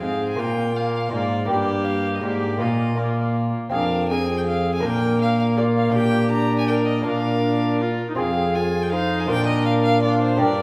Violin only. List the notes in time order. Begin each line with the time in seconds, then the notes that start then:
0.02 F5
0.29 G#5
0.40 G5
0.76 F5
0.94 F5
1.12 D5
1.48 D5
1.85 F5
2.15 D#5
2.24 D5
2.60 D#5
2.98 D5
3.72 F5
4.09 G#5
4.38 G5
4.47 F5
4.75 G#5
4.85 G5
5.22 F5
5.39 F5
5.57 D5
5.77 F5
5.94 G5
6.32 A#5
6.59 G#5
6.67 G5
6.86 D#5
7.06 F5
8.20 F5
8.56 G#5
8.83 G5
8.92 F5
9.20 G#5
9.30 G5
9.47 D#5
9.66 F5
9.84 F5
10.03 D5
10.22 C5
10.38 D5